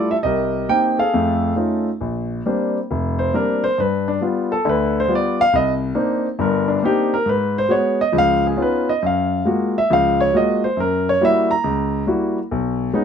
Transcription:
Already playing: G3 A3 E4 F4 G4 A4
0.11 E5
0.23 C2 G4 A#4 D#5
0.69 A#3 C4 D#4 G5
0.99 G#4 A4 F5
1.13 F2 A3
1.56 A3 C#4 D#4 F4
2.01 A#1
2.46 G3 A#3 C4 D4
2.91 F1
3.19 C5
3.33 G3 A#3 C4 D4 A#4
3.64 C5
3.78 G2 B4
4.08 D4
4.21 G3 B3 F4
4.52 A4
4.65 D2 D3
4.69 B4
5.00 C5
5.08 G3 B3 F4
5.15 D5
5.41 F5
5.53 C2 D#5
5.95 A#3 C4 D4 D#4
6.39 G1 G2 A#4
6.68 D4
6.83 A#3 C4 D4 D#4 G4
7.14 A#4
7.26 G#2 B4
7.58 C5
7.69 G#3 B3 F#4 C#5
8.01 D#5
8.12 C#2 F3
8.18 F5
8.47 G#4
8.57 B3 C#4 D#4 F4
8.62 B4
8.89 D#5
9.02 F#2
9.06 F5
9.45 G#3 A#3 F4 F#4
9.78 E5
9.90 C#2 F3 F5
10.21 C#5
10.34 G#3 A#3 F4 F#4 D#5
10.64 C5
10.77 F#2 A#4
11.09 C#5
11.21 G3 A#3 E4 F#4 E5
11.51 A#5
11.64 C#2
12.06 G3 A#3 E4 F#4
12.51 B1
12.94 G#3 B3 C#4 D#4

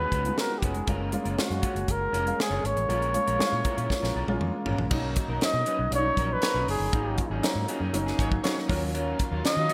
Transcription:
Already playing: G#3 B3 D#4 F4 F#4 B4
0.00 G#3 C#4 F#4 B4
0.12 C#2 G#3 C#4 F#4 B4, kick, closed hi-hat
0.24 G#3 B3 D#4 F4, muted clean electric guitar stroke, closed hi-hat
0.32 F#4
0.38 A#4, snare
0.50 muted clean electric guitar stroke
0.59 F1 G#3 C#4 G4, kick
0.63 F#4 G#4 B4, closed hi-hat
0.74 muted clean electric guitar stroke, closed hi-hat
0.87 F#1 G#3 A#3 C#4 F4 A#4, kick, closed hi-hat
1.12 G#3 A#3 C#4 F4, muted clean electric guitar stroke, closed hi-hat
1.25 F#1 G#3 C#4 F4 A#4, closed hi-hat
1.37 G#3 A#3 C#4 F#4 F5, muted clean electric guitar stroke, snare
1.50 F#2, muted clean electric guitar stroke, closed hi-hat
1.62 G#3 C#4 F4 C#5, kick, closed hi-hat
1.75 F#1, muted clean electric guitar stroke, closed hi-hat
1.87 F#1 A#4, muted clean electric guitar stroke, kick, closed hi-hat
2.00 muted clean electric guitar stroke
2.13 F1 G#3 C#4 F4 A#4, closed hi-hat
2.26 G#3 A#3 C#4 F4, muted clean electric guitar stroke, closed hi-hat
2.39 G#4, muted clean electric guitar stroke, snare
2.50 F#1 G#3 C#4 F4 C#5
2.64 G#1 C#5, muted clean electric guitar stroke, closed hi-hat
2.76 A1, muted clean electric guitar stroke, closed hi-hat
2.89 A#1 G#3 A#3 C#4 F4 A#4, closed hi-hat
3.02 closed hi-hat
3.14 G#3 A#3 C#4 F4, muted clean electric guitar stroke, closed hi-hat
3.27 A#1 G#3 C#4 F4 A#4, closed hi-hat
3.39 G#3 A#3 C#4 E4, muted clean electric guitar stroke, snare
3.46 F4
3.53 A#2, muted clean electric guitar stroke
3.64 G#3 C#4 F4 A#4, kick, closed hi-hat
3.77 A#2 G#3 C#4 F4 A#4, closed hi-hat
3.90 muted clean electric guitar stroke, kick, snare
4.02 A#1 G#3 C#4 F4 A#4, snare
4.15 B1 G#3 C#4 F4 A#4
4.27 A#1 G#3 A#3 C#4 F4, muted clean electric guitar stroke, high tom
4.41 F2, mid tom
4.53 muted clean electric guitar stroke
4.65 A1 G#3 C#4 F4 A#4, floor tom
4.78 A#1, muted clean electric guitar stroke, floor tom
4.91 B1 F#3 A#3 C#4 D#4 A#4, kick, crash
5.16 muted clean electric guitar stroke, kick, closed hi-hat
5.28 B1 F#3 C#4 D#4 A#4
5.41 F#3 A#3 C#4 D#4 D#5, muted clean electric guitar stroke, snare, closed hi-hat
5.54 B2, muted clean electric guitar stroke
5.66 F#3 C#4 D#4 B4, closed hi-hat
5.79 B1, muted clean electric guitar stroke
5.91 B1 F#3 A#3 C#4 D4 C#5, muted clean electric guitar stroke, closed hi-hat
5.98 D#4
6.06 muted clean electric guitar stroke
6.17 A#1 F#3 C#4 D#4 F#4 A#4 C#5, kick, closed hi-hat
6.31 B4, muted clean electric guitar stroke
6.42 F#3 A#3 C#4 D#4 F#4 A#4 C#5, muted clean electric guitar stroke, snare, closed hi-hat
6.54 B1 F#3 C#4 D#4 B4
6.67 F#1 G#4, muted clean electric guitar stroke, open hi-hat
6.80 G1, muted clean electric guitar stroke
6.93 G#1 F#3 A#3 C#4 D#4 G#4, kick, closed hi-hat
7.18 muted clean electric guitar stroke, kick, closed hi-hat
7.30 G#1 F#3 C#4 D#4 G#4
7.43 F#3 A#3 C#4 D#4, muted clean electric guitar stroke, snare, closed hi-hat
7.55 G#2, muted clean electric guitar stroke
7.68 F#3 C#4 D#4 G#4, closed hi-hat
7.80 F#2 F#3 C#4 D#4 G#4
7.93 F#1 F#3 A#3 C#4 D#4, muted clean electric guitar stroke, closed hi-hat
8.06 F#3 C#4 D#4 G#4, snare
8.18 G#1 F#3 C#4 D#4 F#4 G#4 C#5, kick, closed hi-hat
8.31 muted clean electric guitar stroke, kick
8.43 F#3 A#3 C#4 D#4 F#4 G#4 C#5, snare, closed hi-hat
8.56 muted clean electric guitar stroke, snare
8.68 D#2 F#3 A#3 C#4 F4 A#4, kick, open hi-hat
8.82 muted clean electric guitar stroke
8.94 D#3 F#3 C#4 F4 A#4, closed hi-hat
9.19 muted clean electric guitar stroke, kick, closed hi-hat
9.31 D#2 F#3 C#4 F4 A#4
9.44 F#3 A#3 C#4 F4 D#5, muted clean electric guitar stroke, muted fingered electric bass stroke, snare, closed hi-hat
9.56 D#3, muted clean electric guitar stroke
9.69 F#3 C#4 F4 C#5, closed hi-hat

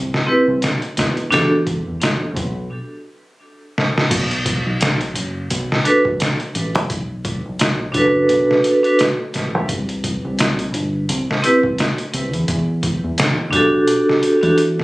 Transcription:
Already playing: C2
0.14 snare
0.26 C4 E4 G4 B4
0.48 C2
0.62 snare, closed hi-hat
0.82 closed hi-hat
0.97 E2, snare, closed hi-hat
1.17 closed hi-hat
1.30 E2 D4 F#4 G4 A4, snare, closed hi-hat
1.67 kick, closed hi-hat
1.88 E2
2.02 snare, closed hi-hat
2.36 B1, kick, closed hi-hat
3.78 snare
3.98 snare
4.11 B1, kick, closed hi-hat, crash
4.31 closed hi-hat
4.46 kick, closed hi-hat
4.66 B1
4.81 snare, closed hi-hat
5.01 closed hi-hat
5.15 F#1, closed hi-hat
5.50 B1, closed hi-hat
5.72 snare
5.85 D4 F#4 A4 B4, closed hi-hat
6.05 kick
6.20 snare, closed hi-hat
6.40 closed hi-hat
6.55 A1, closed hi-hat
6.75 E2, closed hi-hat
6.90 B1, kick, closed hi-hat
7.25 kick, closed hi-hat
7.45 B1
7.59 snare, closed hi-hat
7.92 F#1 D4 F#4, kick, closed hi-hat
7.96 A4 B4
8.29 B1, closed hi-hat
8.51 snare
8.64 closed hi-hat
8.83 D4 F#4 A4 B4, closed hi-hat
8.99 snare, closed hi-hat
9.34 A1, snare, closed hi-hat
9.55 E2
9.69 C2, kick, closed hi-hat
9.89 closed hi-hat
10.04 kick, closed hi-hat
10.25 C2
10.39 snare, closed hi-hat
10.59 closed hi-hat
10.74 G1, closed hi-hat
11.09 C2, closed hi-hat
11.31 snare
11.42 C4 E4 G4 B4, closed hi-hat
11.63 kick
11.78 snare, closed hi-hat
11.98 closed hi-hat
12.14 C2, closed hi-hat
12.33 E2, closed hi-hat
12.48 E2, kick, closed hi-hat
12.83 kick, closed hi-hat
13.04 E2
13.18 snare, closed hi-hat
13.51 B1 D4 F#4 G4, kick, closed hi-hat
13.56 A4
13.88 closed hi-hat
14.09 snare
14.23 closed hi-hat
14.41 E2 D4 F#4 G4 A4, closed hi-hat
14.58 closed hi-hat
14.79 snare

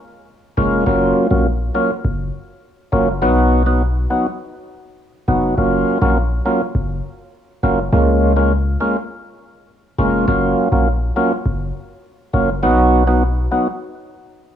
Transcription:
0.57 F1 G#3 A#3 C#4 F4
0.86 F#1 F#3 A#3 C#4 F4
1.31 A#1 F#3 A#3 C#4 F4
1.75 F#3 A#3 C#4 F4
2.05 F#1
2.92 F#1 F#3 A#3 C#4 F4
3.22 B1 F#3 B3 D#4 F#4
3.66 F#3 B3 D#4 F#4
4.10 F#3 B3 D#4 F#4
5.28 F1 F#3 B3 D#4 F#4
5.57 F#1 F#3 A#3 C#4 F4
6.01 A#1 F#3 A#3 C#4 F4
6.46 F#3 A#3 C#4 F4
6.75 F#1
7.63 F#1 F#3 A#3 C#4 F4
7.93 C#2 G#3 A#3 C#4 F4
8.37 G#3 A#3 C#4 F4
8.81 G#3 A#3 C#4 F4
9.98 F1 G#3 A#3 C#4 F4
10.28 F#1 F#3 A#3 C#4 F4
10.72 A#1 F#3 A#3 C#4 F4
11.16 F#3 A#3 C#4 F4
11.46 F#1
12.34 F#1 F#3 A#3 C#4 F4
12.63 B1 F#3 B3 D#4 F#4
13.07 F#3 B3 D#4 F#4
13.51 F#3 B3 D#4 F#4

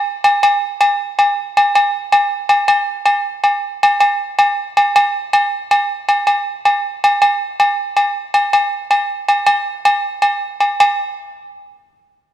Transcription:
0.24 low agogo
0.43 low agogo
0.81 low agogo
1.19 low agogo
1.57 low agogo
1.75 low agogo
2.12 low agogo
2.49 low agogo
2.68 low agogo
3.06 low agogo
3.44 low agogo
3.83 low agogo
4.00 low agogo
4.39 low agogo
4.77 low agogo
4.96 low agogo
5.33 low agogo
5.71 low agogo
6.09 low agogo
6.27 low agogo
6.65 low agogo
7.04 low agogo
7.22 low agogo
7.60 low agogo
7.97 low agogo
8.34 low agogo
8.53 low agogo
8.91 low agogo
9.28 low agogo
9.46 low agogo
9.85 low agogo
10.22 low agogo
10.60 low agogo
10.80 low agogo

